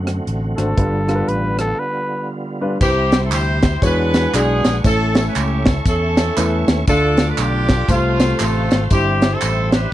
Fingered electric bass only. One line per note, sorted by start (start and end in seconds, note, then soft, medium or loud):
0.00 0.18 F#2 medium
0.27 0.53 A1 medium
0.58 0.75 G#1 medium
0.78 1.21 G1 medium
1.28 1.72 A1 medium
2.81 3.32 C2 loud
3.32 3.75 D2 medium
3.82 4.26 E2 loud
4.34 4.60 B1 medium
4.65 4.82 A#1 medium
4.85 5.28 A1 loud
5.36 5.79 C#2 medium
5.86 6.29 E2 loud
6.37 6.64 E2 loud
6.68 6.85 D#2 medium
6.88 7.31 D2 loud
7.38 7.82 B1 medium
7.88 8.32 C2 loud
8.41 8.67 A1 medium
8.72 8.89 G#1 medium
8.91 9.34 G1 loud
9.42 9.85 A1 medium